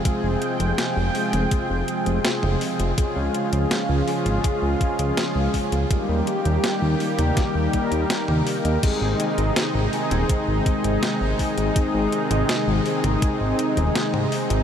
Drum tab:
CC |----------------|----------------|----------------|x---------------|
HH |x-xxx-oxx-xxx-ox|x-xxx-oxx-xxx-ox|x-xxx-oxx-xxx-ox|x-xxx-oxx-xxx-ox|
SD |----o-------o---|----o-------o---|----o---o---o---|----o-------o---|
T2 |-------o-----o--|----------------|-------o-----o--|----------------|
BD |o-------o-------|o-------o-o---o-|o-------o-o-----|o-------o-o---o-|

CC |----------------|
HH |x-xxx-oxx-xxx-ox|
SD |----o-------o---|
T2 |-------o-----o--|
BD |o-------o-------|